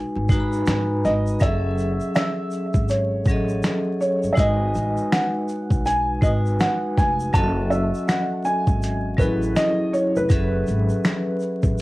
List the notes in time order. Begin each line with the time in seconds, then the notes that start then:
Already playing: G#3 D#4 F#4 B4 G#5
0.16 G#1
0.29 G#2 G#3 D#4 F#4, kick, closed hi-hat, shaker
0.32 B4 A#5, shaker
0.40 B5
0.53 shaker
0.67 G#2, finger snap, snare, closed hi-hat, shaker
1.05 G#1 D#5, snare, shaker
1.27 shaker
1.40 F#1 F#3 C#4 G#4 A4 E5, kick, closed hi-hat, shaker
1.78 shaker
1.80 shaker
2.00 shaker
2.15 E5, finger snap, snare, closed hi-hat, shaker
2.51 shaker
2.53 shaker
2.74 G#1, kick, shaker
2.89 C#5, closed hi-hat, shaker
3.25 A1 F#3 C#4, kick, shaker
3.29 G#4 A4 D#5, shaker
3.49 shaker
3.63 finger snap, snare, closed hi-hat, shaker
4.01 C#5, shaker
4.23 G1, shaker
4.33 G#3 D#4 E5
4.37 G#1 F#4 B4 D#5 G#5, kick, closed hi-hat, shaker
4.75 A1, shaker
4.76 shaker
4.97 shaker
5.12 F#5, finger snap, snare, closed hi-hat, shaker
5.48 shaker
5.70 B1, kick, shaker
5.86 G#5, closed hi-hat, shaker
6.21 G#1 G#3 D#4 F#4 B4 D#5, kick, shaker
6.25 G#5, shaker
6.46 shaker
6.60 F#5, finger snap, snare, closed hi-hat, shaker
6.97 F1 G#5, kick, snare, shaker
7.20 shaker
7.33 F#1 F#3 C#4 F#4 A4 D#5 A5, kick, closed hi-hat, shaker
7.43 E5
7.70 E5, shaker
7.95 shaker
8.08 F#5, finger snap, snare, closed hi-hat, shaker
8.45 G#5, shaker
8.67 G#1, kick, shaker
8.82 closed hi-hat, shaker
9.17 A1 F#3 C#4 G#4 A4 B4, kick, shaker
9.21 E4, shaker
9.42 shaker
9.56 D#5, finger snap, snare, closed hi-hat, shaker
9.93 C#5, shaker
10.16 F1 B4, shaker
10.29 F#1 F#3 C#4 G#4 A4 B4, kick, closed hi-hat, shaker
10.33 E5
10.67 G#1, shaker
10.68 shaker
10.89 shaker
11.04 finger snap, snare, closed hi-hat, shaker
11.40 shaker
11.42 shaker
11.63 A1, kick, shaker
11.78 shaker